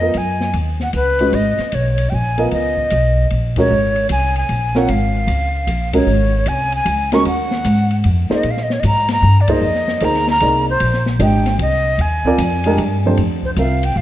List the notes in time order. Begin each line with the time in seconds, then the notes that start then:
Already playing: F2 D#5
0.01 B3 F4 A#4 D#5
0.14 F#2 G#5, ride
0.41 snare
0.53 D#2, ride
0.80 F#5, snare
0.93 C#2 B4, hi-hat pedal, ride
1.19 G#3 C#4 F#4 B4, ride
1.32 G#1 D#5, ride
1.58 muted upright bass stroke, snare, ride
1.72 B1 C#5, hi-hat pedal, ride
1.98 ride
2.10 A#1 G5
2.14 G#5
2.38 B3 F4 A#4 D#5, ride
2.51 C#2 D#5, ride
2.77 kick
2.90 B1, hi-hat pedal, ride
3.30 A#1, ride
3.56 G#3 C#4 F#4 A#4 C#5, kick, ride
3.70 G#1
3.96 ride
4.09 C2 G#5, hi-hat pedal, ride
4.36 G#5, ride
4.49 A#1, ride
4.75 C4 F4 A#4 C#5 F#5, snare
4.88 G#1 F5, ride
5.27 C#2, ride
5.67 A#1, hi-hat pedal, ride
5.93 G#3 C#4 F#4 A#4 C#5, kick, ride
6.07 G#1
6.46 C2 G#5, hi-hat pedal, ride
6.72 G#5, ride
6.86 C#2, ride
7.12 G#3 C#4 F#4 A#4 C#6, snare, ride
7.25 D#2 F#5, ride
7.51 snare
7.64 G#2, hi-hat pedal, ride
7.91 ride
8.04 F2, ride
8.30 A#3 D#4 G#4 C5 D#5, muted upright bass stroke, snare
8.43 A#2, ride
8.51 F5
8.57 snare
8.63 D#5
8.70 C#5, snare
8.80 G#2 D#5, hi-hat pedal, ride
8.86 A#5
9.08 A#5, snare, ride
9.22 G2
9.41 D5
9.48 A#3 D#4 G#4 C5, kick, ride
9.52 D#5
9.62 F2
9.75 snare
9.88 snare
10.00 D2 A#3 D#4 G#4 C5, hi-hat pedal, ride
10.04 A#5
10.14 snare
10.27 A#5, snare
10.40 C2 A#3 D#4 G#4 D5, ride
10.70 C5
10.80 A#1, ride
10.94 snare
11.06 snare
11.19 G#1 D4 G4 C5 D#5 G5, hi-hat pedal, ride
11.46 snare, ride
11.59 C2 D#5, ride
11.98 D#2 G#5, ride
12.25 C4 F4 A#4 D5, kick
12.38 F2, hi-hat pedal, ride
12.64 G#3 D4 G4 A#4, ride
12.77 G2, ride
13.06 F2 A3 D4 G4 C5
13.17 F2, ride
13.43 C5, kick
13.56 C2 C4 F4 A#4 E5 F5, hi-hat pedal, ride
13.83 G5, ride
13.96 A1 F5